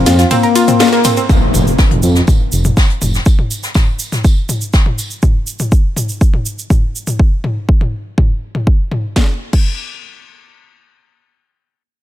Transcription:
0.00 0.21 C4 loud
0.06 0.24 F2 loud
0.06 0.12 F4 medium
0.06 0.12 F5 medium
0.06 snare medium
0.06 open hi-hat loud
0.06 ride medium
0.06 tambourine medium
0.06 shaker medium
0.19 0.27 F4 medium
0.19 0.27 F5 medium
0.19 snare medium
0.19 closed hi-hat soft
0.19 shaker soft
0.31 1.20 A#3 loud
0.31 0.40 C4 loud
0.31 0.40 C5 medium
0.31 closed hi-hat medium
0.31 mid tom medium
0.31 ride medium
0.31 tambourine medium
0.31 shaker soft
0.43 0.55 A#4 medium
0.43 0.55 A#5 medium
0.43 closed hi-hat soft
0.55 0.64 F4 loud
0.55 0.64 F5 medium
0.55 open hi-hat loud
0.55 ride medium
0.55 tambourine medium
0.55 shaker medium
0.68 0.77 C4 medium
0.68 0.77 C5 medium
0.68 closed hi-hat soft
0.68 mid tom medium
0.68 shaker medium
0.79 0.92 F4 medium
0.79 0.92 F5 medium
0.79 snare loud
0.79 closed hi-hat medium
0.79 ride medium
0.79 tambourine medium
0.79 shaker soft
0.93 1.01 A#3 loud
0.93 1.01 A#4 medium
0.93 closed hi-hat soft
1.04 1.10 C4 medium
1.04 1.10 C5 medium
1.04 open hi-hat loud
1.04 mid tom medium
1.04 ride medium
1.04 tambourine medium
1.04 shaker medium
1.17 1.26 C4 medium
1.17 1.26 C5 medium
1.17 closed hi-hat soft
1.17 shaker soft
1.29 kick loud
1.29 tambourine loud
1.29 impact medium
1.29 shaker soft
1.54 1.72 F1 loud
1.54 mid tom medium
1.54 tambourine medium
1.54 shaker medium
1.67 shaker medium
1.78 kick loud
1.78 snare loud
1.78 tambourine medium
1.78 shaker soft
1.91 2.00 F1 medium
1.91 closed hi-hat soft
1.91 mid tom medium
2.02 2.21 F2 loud
2.02 tambourine medium
2.02 shaker medium
2.15 snare soft
2.15 shaker soft
2.27 kick loud
2.27 mid tom medium
2.27 tambourine medium
2.27 shaker soft
2.52 2.70 F1 medium
2.52 tambourine medium
2.52 shaker medium
2.65 mid tom medium
2.65 shaker medium
2.77 kick loud
2.77 snare loud
2.77 tambourine medium
2.77 shaker soft
2.90 closed hi-hat soft
3.02 3.19 F1 medium
3.02 mid tom medium
3.02 tambourine medium
3.02 shaker medium
3.14 snare medium
3.14 shaker soft
3.25 kick loud
3.25 tambourine medium
3.25 shaker soft
3.39 mid tom medium
3.50 tambourine medium
3.50 shaker medium
3.63 snare soft
3.63 shaker medium
3.74 kick loud
3.74 snare loud
3.74 mid tom medium
3.74 tambourine medium
3.74 shaker soft
3.99 tambourine medium
3.99 shaker loud
4.12 snare soft
4.12 mid tom medium
4.12 shaker soft
4.24 kick loud
4.24 tambourine medium
4.24 shaker soft
4.49 mid tom medium
4.49 tambourine medium
4.49 shaker loud
4.61 shaker medium
4.73 kick loud
4.73 snare loud
4.73 tambourine medium
4.73 shaker soft
4.86 mid tom medium
4.98 tambourine medium
4.98 shaker loud
5.10 shaker soft
5.22 kick loud
5.22 mid tom medium
5.22 shaker soft
5.47 shaker medium
5.59 mid tom medium
5.59 shaker medium
5.72 kick loud
5.72 shaker soft
5.96 mid tom medium
5.96 shaker medium
6.09 shaker medium
6.21 kick loud
6.21 shaker soft
6.34 mid tom medium
6.46 shaker medium
6.59 shaker medium
6.70 kick loud
6.70 mid tom medium
6.70 shaker soft
6.95 shaker medium
7.07 mid tom medium
7.07 shaker medium
7.19 kick loud
7.44 mid tom medium
7.69 kick loud
7.81 mid tom medium
8.18 kick loud
8.18 mid tom medium
8.55 mid tom medium
8.67 kick loud
8.91 mid tom medium
9.16 kick loud
9.16 snare medium
9.53 kick loud
9.53 crash medium

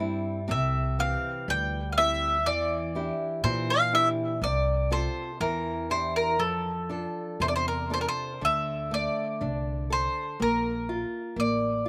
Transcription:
0.00 0.50 G2 medium
0.00 0.45 G3 medium
0.00 0.39 C4 soft
0.00 0.39 D4 soft
0.00 0.40 E4 soft
0.48 1.14 C2 medium
0.48 1.45 C3 medium
0.48 1.01 E5 medium
0.99 1.78 E3 soft
0.99 1.78 C4 soft
0.99 1.78 G4 medium
0.99 1.50 F5 medium
1.48 2.46 D2 medium
1.48 2.44 G3 medium
1.48 1.89 G5 loud
1.92 1.97 F5 medium
1.98 2.37 C4 soft
1.98 2.37 E4 soft
1.98 2.37 G4 medium
1.98 2.48 E5 loud
2.46 3.09 E2 loud
2.46 3.41 E3 medium
2.46 3.43 D5 medium
2.95 3.73 D4 medium
2.95 3.73 E4 soft
2.95 3.74 G4 medium
3.44 4.43 A#2 loud
3.44 4.39 E3 medium
3.44 3.69 C5 medium
3.70 3.94 F5 medium
3.93 4.32 D4 soft
3.93 4.32 E4 soft
3.93 4.32 G4 medium
3.93 4.08 E5 loud
4.42 5.06 C2 medium
4.42 5.37 C3 medium
4.42 4.92 D5 medium
4.91 5.30 C4 medium
4.91 5.31 F4 soft
4.91 5.31 A4 medium
4.91 5.40 C5 medium
5.40 6.39 E2 medium
5.40 6.36 E3 medium
5.40 5.91 A#4 medium
5.90 6.30 D4 soft
5.90 6.29 E4 soft
5.90 6.30 G4 soft
5.90 6.16 C5 medium
6.16 6.41 A#4 medium
6.39 7.04 F2 medium
6.39 7.36 F3 medium
6.39 7.86 A4 medium
6.89 7.70 D4 soft
6.89 7.70 F4 soft
6.89 7.71 A4 medium
7.40 8.06 E2 medium
7.40 8.38 C3 medium
7.40 7.47 C5 medium
7.48 7.53 D5 medium
7.56 7.67 C5 medium
7.68 7.92 A#4 medium
7.90 8.31 D4 soft
7.90 8.31 F4 soft
7.90 8.31 A4 soft
7.90 7.99 C5 medium
8.01 8.06 A#4 medium
8.08 8.44 C5 medium
8.41 9.06 D2 medium
8.41 10.36 D3 medium
8.41 8.93 E5 medium
8.91 9.39 A3 medium
8.91 9.92 D5 medium
9.41 10.05 C2 medium
9.41 9.89 D4 medium
9.90 10.38 A4 medium
9.90 10.42 C5 medium
10.40 11.03 A#1 medium
10.40 11.35 A#3 medium
10.40 11.39 A#4 medium
10.89 11.36 F4 medium
11.36 11.89 A1 medium
11.36 11.83 A#3 medium
11.36 11.89 D5 medium
11.86 11.89 F4 medium

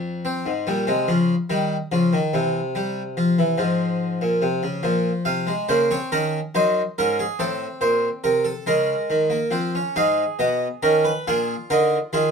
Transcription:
0.00 0.43 F2 medium
0.25 0.50 C4 medium
0.46 0.65 G#2 medium
0.67 0.86 A#2 medium
0.67 0.87 G3 medium
0.87 1.07 C3 medium
0.87 1.07 G#3 medium
1.08 1.33 C#3 medium
1.08 1.34 F3 medium
1.50 1.75 D#3 medium
1.50 1.75 G3 medium
1.92 2.17 C#3 medium
1.92 2.11 F3 medium
2.13 2.32 D#3 medium
2.34 3.54 C3 medium
2.34 2.59 E3 medium
2.75 3.01 G3 medium
3.17 3.37 F3 medium
3.39 3.58 E3 medium
3.58 4.18 G#2 medium
3.58 4.80 F3 medium
4.21 4.41 A#2 medium
4.42 4.62 C3 medium
4.63 4.83 C#3 medium
4.83 5.10 A#2 medium
4.83 5.45 F3 medium
5.25 5.52 C3 medium
5.25 5.52 F5 medium
5.47 5.67 G#3 medium
5.69 5.95 C#3 medium
5.69 5.89 A#3 medium
5.69 5.89 C5 medium
5.91 6.11 C4 medium
5.91 6.11 C#5 medium
6.12 6.38 D#3 medium
6.12 6.38 C#4 medium
6.12 6.38 A#4 medium
6.55 6.81 F#2 medium
6.55 6.80 D#4 medium
6.55 6.81 C5 medium
6.98 7.24 G#2 medium
6.98 7.24 C#4 medium
6.98 7.17 A#4 medium
7.19 7.39 G#4 medium
7.39 7.65 A2 medium
7.39 8.63 C4 medium
7.39 7.66 A4 medium
7.81 8.07 A#2 medium
7.81 8.08 C5 medium
8.24 8.50 C3 medium
8.24 8.44 A#4 medium
8.44 8.65 A4 medium
8.66 8.93 C#3 medium
8.66 9.29 G#3 medium
8.66 9.91 A#4 medium
9.10 9.36 D#3 medium
9.30 9.51 A#3 medium
9.51 9.78 F3 medium
9.51 9.72 C4 medium
9.75 9.95 C#4 medium
9.96 10.23 G#2 medium
9.96 10.23 D#4 medium
9.96 11.22 G#4 medium
9.96 10.23 F5 medium
10.39 10.66 B2 medium
10.39 10.66 B3 medium
10.39 10.66 D#5 medium
10.83 11.09 D#3 medium
10.83 11.10 C#4 medium
10.83 11.03 A#4 medium
11.05 11.25 B4 medium
11.27 11.54 A#2 medium
11.27 11.54 D4 medium
11.27 12.12 F4 medium
11.27 11.54 G#4 medium
11.70 11.97 D3 medium
11.70 11.97 D#4 medium
11.70 11.97 A#4 medium
12.13 12.31 D#3 medium
12.13 12.31 F4 medium
12.13 12.31 G#4 medium

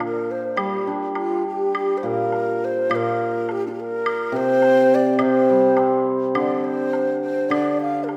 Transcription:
0.00 1.16 A#2 medium
0.00 high woodblock soft
0.00 low woodblock soft
0.05 0.33 A#4 medium
0.31 0.61 C5 medium
0.57 2.33 G3 medium
0.57 0.91 G4 medium
0.57 high woodblock medium
0.87 2.05 D4 soft
1.15 1.44 F4 medium
1.15 high woodblock soft
1.15 low woodblock soft
1.48 1.99 G4 medium
1.75 high woodblock medium
1.98 2.08 C5 medium
2.03 2.88 A#2 medium
2.03 2.66 A#4 medium
2.32 low woodblock soft
2.65 2.97 C5 medium
2.90 4.33 A#2 medium
2.90 high woodblock medium
2.95 3.53 A#4 medium
3.49 3.66 G4 medium
3.49 low woodblock soft
3.67 3.69 D4 soft
3.67 3.72 F4 soft
3.73 3.82 G4 soft
3.80 4.38 A#4 medium
4.06 high woodblock medium
4.32 5.18 C3 medium
4.36 4.96 C5 loud
4.62 low woodblock soft
4.95 5.13 D5 medium
5.13 5.24 D5 medium
5.19 6.35 C3 medium
5.19 6.07 C5 medium
5.19 high woodblock medium
5.49 6.65 G3 soft
5.77 6.93 C4 soft
5.77 high woodblock soft
5.77 low woodblock soft
6.35 7.49 D3 medium
6.35 6.66 D5 medium
6.35 high woodblock medium
6.64 7.21 C5 medium
6.93 low woodblock soft
7.21 7.51 C5 medium
7.49 8.17 D3 medium
7.49 7.78 D5 medium
7.49 high woodblock medium
7.81 8.05 F5 medium
8.04 8.10 A#4 medium
8.09 8.17 G4 medium
8.09 low woodblock soft

